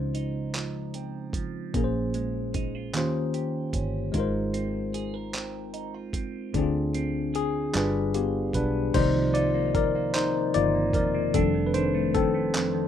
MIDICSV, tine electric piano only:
0, 0, Header, 1, 2, 480
1, 0, Start_track
1, 0, Key_signature, -3, "minor"
1, 0, Tempo, 800000
1, 1046, Time_signature, 6, 3, 24, 8
1, 7727, End_track
2, 0, Start_track
2, 0, Title_t, "Tine electric piano"
2, 0, Program_c, 0, 4
2, 0, Control_c, 0, 64, 127
2, 0, Note_on_c, 0, 49, 71
2, 0, Note_on_c, 0, 56, 66
2, 0, Note_on_c, 0, 63, 65
2, 0, Note_on_c, 0, 65, 63
2, 0, Note_on_c, 0, 72, 74
2, 1014, Note_off_c, 0, 49, 0
2, 1020, Note_off_c, 0, 56, 0
2, 1026, Note_off_c, 0, 63, 0
2, 1032, Note_off_c, 0, 65, 0
2, 1038, Note_off_c, 0, 72, 0
2, 1041, Note_on_c, 0, 46, 69
2, 1047, Note_on_c, 0, 58, 66
2, 1053, Note_on_c, 0, 61, 64
2, 1055, Control_c, 0, 64, 0
2, 1058, Note_on_c, 0, 68, 67
2, 1064, Note_on_c, 0, 70, 57
2, 1094, Note_off_c, 0, 70, 0
2, 1104, Note_on_c, 0, 72, 75
2, 1150, Control_c, 0, 64, 127
2, 1760, Note_off_c, 0, 58, 0
2, 1763, Note_on_c, 0, 51, 75
2, 1764, Note_off_c, 0, 46, 0
2, 1767, Note_off_c, 0, 61, 0
2, 1767, Note_on_c, 0, 58, 68
2, 1772, Note_off_c, 0, 68, 0
2, 1774, Note_on_c, 0, 61, 72
2, 1775, Control_c, 0, 64, 0
2, 1777, Note_on_c, 0, 65, 74
2, 1778, Note_off_c, 0, 72, 0
2, 1783, Note_on_c, 0, 67, 70
2, 1785, Note_on_c, 0, 72, 82
2, 1881, Control_c, 0, 64, 127
2, 2472, Note_on_c, 0, 56, 76
2, 2482, Note_on_c, 0, 63, 66
2, 2485, Note_off_c, 0, 51, 0
2, 2486, Note_off_c, 0, 65, 0
2, 2487, Note_off_c, 0, 58, 0
2, 2490, Note_off_c, 0, 61, 0
2, 2493, Control_c, 0, 64, 0
2, 2493, Note_on_c, 0, 65, 70
2, 2495, Note_off_c, 0, 67, 0
2, 2496, Note_off_c, 0, 72, 0
2, 2506, Note_on_c, 0, 70, 69
2, 2518, Note_on_c, 0, 72, 82
2, 2610, Control_c, 0, 64, 127
2, 3895, Note_off_c, 0, 56, 0
2, 3900, Note_off_c, 0, 63, 0
2, 3906, Note_off_c, 0, 65, 0
2, 3912, Note_off_c, 0, 70, 0
2, 3918, Note_off_c, 0, 72, 0
2, 3924, Note_on_c, 0, 50, 82
2, 3931, Note_on_c, 0, 62, 75
2, 3935, Control_c, 0, 64, 0
2, 3935, Note_on_c, 0, 64, 49
2, 3942, Note_on_c, 0, 68, 69
2, 3948, Note_on_c, 0, 60, 81
2, 3970, Note_off_c, 0, 64, 0
2, 3974, Note_on_c, 0, 65, 73
2, 4033, Control_c, 0, 64, 127
2, 4406, Note_off_c, 0, 68, 0
2, 4413, Note_on_c, 0, 68, 102
2, 4638, Note_off_c, 0, 62, 0
2, 4640, Note_on_c, 0, 55, 77
2, 4644, Note_off_c, 0, 65, 0
2, 4645, Note_off_c, 0, 50, 0
2, 4645, Note_on_c, 0, 62, 72
2, 4651, Note_off_c, 0, 68, 0
2, 4652, Note_on_c, 0, 65, 70
2, 4655, Control_c, 0, 64, 0
2, 4657, Note_off_c, 0, 60, 0
2, 4658, Note_on_c, 0, 68, 69
2, 4663, Note_on_c, 0, 71, 81
2, 4755, Control_c, 0, 64, 127
2, 4889, Note_on_c, 0, 67, 87
2, 4899, Note_on_c, 0, 59, 73
2, 5111, Note_off_c, 0, 67, 0
2, 5116, Note_off_c, 0, 59, 0
2, 5122, Note_off_c, 0, 71, 0
2, 5129, Note_on_c, 0, 71, 93
2, 5131, Note_off_c, 0, 62, 0
2, 5138, Note_on_c, 0, 62, 68
2, 5356, Note_off_c, 0, 62, 0
2, 5363, Note_off_c, 0, 55, 0
2, 5366, Note_on_c, 0, 72, 119
2, 5369, Note_off_c, 0, 65, 0
2, 5369, Note_on_c, 0, 51, 65
2, 5370, Note_on_c, 0, 53, 57
2, 5372, Note_on_c, 0, 58, 52
2, 5373, Note_off_c, 0, 68, 0
2, 5375, Note_off_c, 0, 71, 0
2, 5375, Control_c, 0, 64, 0
2, 5375, Note_on_c, 0, 74, 68
2, 5376, Note_on_c, 0, 63, 94
2, 5474, Control_c, 0, 64, 127
2, 5595, Note_off_c, 0, 63, 0
2, 5596, Note_off_c, 0, 74, 0
2, 5603, Note_on_c, 0, 74, 101
2, 5612, Note_on_c, 0, 65, 76
2, 5613, Note_off_c, 0, 72, 0
2, 5687, Note_off_c, 0, 51, 0
2, 5687, Note_off_c, 0, 53, 0
2, 5689, Note_off_c, 0, 58, 0
2, 5833, Note_off_c, 0, 65, 0
2, 5849, Note_on_c, 0, 70, 108
2, 5852, Note_off_c, 0, 74, 0
2, 5858, Note_on_c, 0, 74, 80
2, 6076, Note_off_c, 0, 74, 0
2, 6083, Note_on_c, 0, 72, 104
2, 6094, Note_on_c, 0, 63, 92
2, 6095, Note_off_c, 0, 70, 0
2, 6314, Note_off_c, 0, 63, 0
2, 6326, Note_on_c, 0, 74, 113
2, 6328, Note_on_c, 0, 51, 53
2, 6330, Note_on_c, 0, 53, 48
2, 6331, Note_on_c, 0, 58, 49
2, 6332, Note_off_c, 0, 72, 0
2, 6332, Note_on_c, 0, 63, 56
2, 6336, Note_on_c, 0, 65, 86
2, 6544, Note_off_c, 0, 51, 0
2, 6544, Note_off_c, 0, 53, 0
2, 6545, Note_off_c, 0, 58, 0
2, 6545, Note_off_c, 0, 63, 0
2, 6555, Note_off_c, 0, 65, 0
2, 6567, Note_on_c, 0, 70, 84
2, 6570, Note_off_c, 0, 74, 0
2, 6578, Note_on_c, 0, 74, 70
2, 6790, Note_off_c, 0, 70, 0
2, 6796, Note_off_c, 0, 74, 0
2, 6806, Note_on_c, 0, 69, 102
2, 6808, Note_on_c, 0, 51, 61
2, 6812, Note_on_c, 0, 55, 56
2, 6814, Note_on_c, 0, 57, 53
2, 6815, Control_c, 0, 64, 0
2, 6816, Note_on_c, 0, 60, 81
2, 6816, Note_on_c, 0, 62, 66
2, 6909, Control_c, 0, 64, 127
2, 6990, Note_off_c, 0, 69, 0
2, 6996, Note_off_c, 0, 60, 0
2, 6999, Note_on_c, 0, 71, 74
2, 7044, Note_off_c, 0, 71, 0
2, 7044, Note_on_c, 0, 72, 103
2, 7048, Note_off_c, 0, 51, 0
2, 7056, Note_on_c, 0, 51, 76
2, 7128, Note_off_c, 0, 55, 0
2, 7129, Note_off_c, 0, 57, 0
2, 7130, Note_off_c, 0, 62, 0
2, 7275, Note_off_c, 0, 51, 0
2, 7287, Note_on_c, 0, 69, 118
2, 7292, Note_off_c, 0, 72, 0
2, 7298, Note_on_c, 0, 60, 92
2, 7727, Note_off_c, 0, 60, 0
2, 7727, Note_off_c, 0, 69, 0
2, 7727, End_track
0, 0, End_of_file